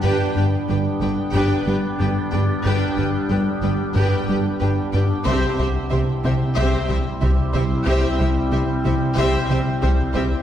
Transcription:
X:1
M:4/4
L:1/8
Q:1/4=92
K:Gmix
V:1 name="Violin section"
[Bg] [Bg] [Bg] [Bg] [Bg] [Bg] [Bg] [Bg] | [Bg] [Bg] [Bg] [Bg] [Bg] [Bg] [Bg] [Bg] | [ce] [ce] [ce] [ce] [ce] [ce] [ce] [ce] | [ce] [ce] [ce] [ce] [ce] [ce] [ce] [ce] |]
V:2 name="Viola section"
[DG] [DG] [DG] [DG] [DG] [DG] [DG] [DG] | [DG] [DG] [DG] [DG] [DG] [DG] [DG] [DG] | [CG] [CG] [CG] [CG] [CG] [CG] [CG] [CG] | [CG] [CG] [CG] [CG] [CG] [CG] [CG] [CG] |]
V:3 name="Synth drone"
[G,B,DG]8- | [G,B,DG]8 | [G,CEG]8- | [G,CEG]8 |]
V:4 name="Cello section" clef=bass
G,, G,, G,, G,, G,, G,, G,, G,, | G,, G,, G,, G,, G,, G,, G,, G,, | C, C, C, C, C, C, C, C, | C, C, C, C, C, C, C, C, |]
V:5 name="Analog synth bass" clef=bass
G,, G,, G, G, G,, G, G,, G,, | G,, G,, G, G, G,, G, G,, G,, | C,, C,, C, C, C,, C, C,, C,, | C,, C,, C, C, C,, C, C,, C,, |]
V:6 name="Double bass section" clef=bass
G,,, G,,, G,,, G,,, G,,, G,,, G,,, G,,, | G,,, G,,, G,,, G,,, G,,, G,,, G,,, G,,, | C,, C,, C,, C,, C,, C,, C,, C,, | C,, C,, C,, C,, C,, C,, C,, C,, |]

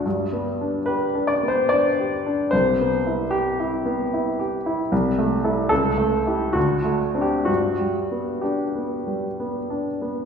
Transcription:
X:1
M:3/4
L:1/16
Q:1/4=72
K:G
V:1 name="Grand piano"
z4 B2 d c d4 | c4 G6 z2 | z4 A4 F3 G | F4 G6 z2 |]
V:2 name="Grand piano"
(3G,,2 B,2 D2 (3G2 D2 B,2 (3D2 G2 D2 | (3C,,2 B,2 E2- (3E2 E2 B,2 (3E2 G2 E2 | (3C,,2 A,2 [EA]2 (3^C,,2 A,2 [EG]2 (3D,,2 A,2 [=CD]2 | (3G,,2 G,2 B,2 (3D2 B,2 G,2 (3B,2 D2 B,2 |]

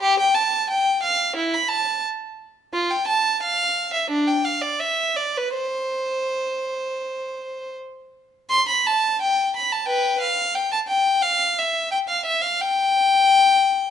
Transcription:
X:1
M:4/4
L:1/16
Q:1/4=88
K:C
V:1 name="Violin"
G g a2 g2 f2 E b a2 z4 | F g a2 f3 e D g f d e2 d B | c12 z4 | c' b a2 g2 b a [Bg]2 f2 g a g2 |
f2 e2 g f e f g8 |]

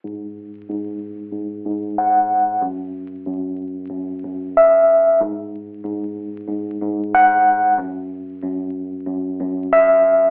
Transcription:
X:1
M:4/4
L:1/8
Q:"Swing 16ths" 1/4=93
K:F#dor
V:1 name="Tine electric piano" clef=bass
G,,2 G,,2 G,, G,, f2 | F,,2 F,,2 F,, F,, e2 | G,,2 G,,2 G,, G,, f2 | F,,2 F,,2 F,, F,, e2 |]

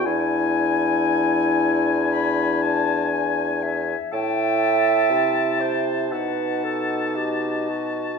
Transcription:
X:1
M:4/4
L:1/16
Q:1/4=58
K:Bphr
V:1 name="Oboe"
^g16 | a8 a8 |]
V:2 name="Flute"
^g8 b2 a2 g2 e2 | g6- g z f4 ^d4 |]
V:3 name="Clarinet"
E12- E2 z2 | e6 c2 B2 A2 G2 F2 |]
V:4 name="French horn"
D16 | E8 ^D8 |]
V:5 name="Bassoon" clef=bass
E,,16 | A,,4 C,4 B,,8 |]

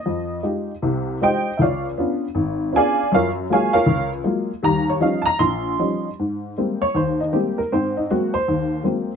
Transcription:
X:1
M:4/4
L:1/16
Q:"Swing" 1/4=158
K:Ab
V:1 name="Honky-tonk piano"
e4 z8 [ceg]4 | [Fd=d_f=f]2 z8 z2 [Adfa]4 | [FBdf]2 z2 [Adfa]2 [FBdf]4 z6 | b2 d2 f2 [=ab]2 c'6- c' z |
z6 d2 c2 E2 G2 B2 | c2 E2 _G2 c6 z4 |]
V:2 name="Honky-tonk piano" clef=bass
F,,4 [A,EFG]2 z2 [C,,C,]4 [A,EFG]2 z2 | D,,4 [_CD=DF]2 z2 A,,,4 [C_D=DF]2 z2 | _G,,4 [_G,A,B,F]2 z2 D,,4 [G,A,B,F]2 z2 | [E,,G,]4 [F,G,DE]2 z2 B,,,4 [F,G,DE]2 z2 |
A,,4 [G,A,B,C]2 z2 E,,4 [G,A,B,C]2 z2 | [A,,C]4 [_G,A,B,C]2 z2 E,,4 [G,A,B,C]2 z2 |]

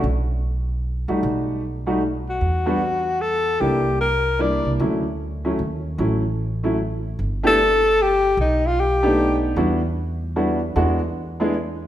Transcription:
X:1
M:3/4
L:1/16
Q:"Swing" 1/4=151
K:D
V:1 name="Alto saxophone"
z12 | z8 z2 F2- | F8 A4 | G4 _B4 d3 z |
z12 | z12 | [K:Em] z2 A6 G4 | ^D2 =F2 G6 z2 |
z12 | z12 |]
V:2 name="Upright piano"
z8 z2 [G,A,^DF]2- | [G,A,^DF]4 z2 [G,A,DF]2 z4 | z2 [G,B,DF]2 z8 | [G,_B,DE]2 z6 [G,B,DE]4 |
[F,A,CE]2 z4 [F,A,CE]2 z4 | [F,A,CE]2 z4 [F,A,CE]2 z4 | [K:Em] z2 [A,B,DEG]2 z8 | z6 [A,B,D^DG]6 |
[G,B,DEF]2 z6 [G,B,DEF]2 z2 | [^G,B,DEF]2 z4 [G,B,DE^G]2 z4 |]
V:3 name="Upright bass" clef=bass
B,,,8- B,,,2 F,,2 | B,,,12 | E,,12 | =C,,8- C,,2 C,,2 |
D,,8 _E,,4 | A,,,12 | [K:Em] G,,,12 | B,,,12 |
E,,12 | E,,12 |]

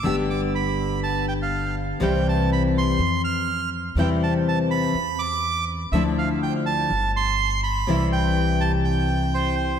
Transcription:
X:1
M:4/4
L:1/16
Q:1/4=123
K:C
V:1 name="Bandoneon"
e'2 d'2 b4 a2 g f3 z2 | g2 a2 b2 c'4 f'4 z2 | g2 a2 a2 b4 d'4 z2 | e2 f2 g2 a4 c'4 b2- |
b2 g4 a2 g4 c4 |]
V:2 name="Nylon-string guitar" clef=bass
[D,G,B,G]16 | [C,E,G,CE]8 z8 | [C,E,G,CE]8 z8 | [D,F,A,DE]8 z8 |
[C,E,G,E]16 |]
V:3 name="Upright bass" clef=bass
G,,,16 | C,,8 F,,8 | E,,8 E,,8 | D,,8 G,,,8 |
C,,16 |]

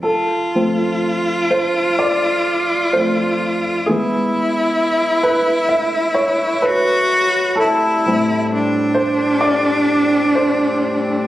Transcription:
X:1
M:4/4
L:1/16
Q:1/4=64
K:F
V:1 name="Upright piano"
A6 c2 d4 c3 z | ^G6 =B2 e2 ^c2 B3 z | A6 c2 d4 c3 z |]
V:2 name="Upright piano" clef=bass
z2 [F,A,C]6 z4 [F,A,C]2 z2 | [E,^G,=B,]16 | z2 [A,,G,C]6 z8 |]
V:3 name="Cello"
F16 | E12 ^F4 | E4 D12 |]
V:4 name="Harmonium" clef=bass
z16 | z16 | [A,,G,C]16 |]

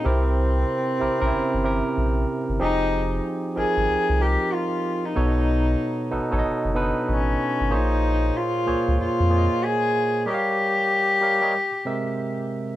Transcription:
X:1
M:4/4
L:1/16
Q:"Swing 16ths" 1/4=94
K:Fm
V:1 name="Tine electric piano"
[C,C=EGB]6 [C,CEGB] [C,CDEGB]3 [C,CEGB]6 | [F,CEGA]6 [F,CEBg]4 [F,CEGB]6 | [=B,,=B,^D=A^c]6 [B,,B,DA=B] [B,,B,DAc^d]3 [B,,B,=D^DAB]6 | [B,,B,Acd]6 [B,,B,Acd]4 [B,,B,Acde]6 |
[G,GBdef]6 [G,GBdf] [G,GBde] z2 [C,A,CB=e]6 |]
V:2 name="Cello"
C12- C2 z2 | E4 z2 A4 G2 F3 E- | E6- E z4 z ^C4 | E4 F4 F4 A4 |
G12- G2 z2 |]
V:3 name="Analog synth bass" clef=bass
C,,4 z2 B,,, B,,, G,,, G,,,2 z B,,,2 z G,,, | F,,,4 z2 A,,, A,,, C,, C,,2 z4 z | =B,,,4 z2 =A,,, A,,, ^F,,, F,,,2 z A,,,2 z _A,,, | B,,,4 z2 D,, D,, F,, F,,2 z4 z |
z16 |]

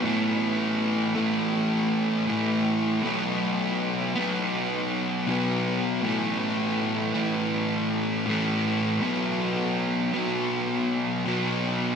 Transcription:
X:1
M:4/4
L:1/8
Q:1/4=80
K:Bdor
V:1 name="Distorted electric guitar" clef=bass
[A,,E,A,]3 [A,,E,A,]3 [A,,E,A,]2 | [B,,F,B,]3 [B,,F,B,]3 [B,,F,B,]2 | [A,,E,A,]3 [A,,E,A,]3 [A,,E,A,]2 | [B,,F,B,]3 [B,,F,B,]3 [B,,F,B,]2 |]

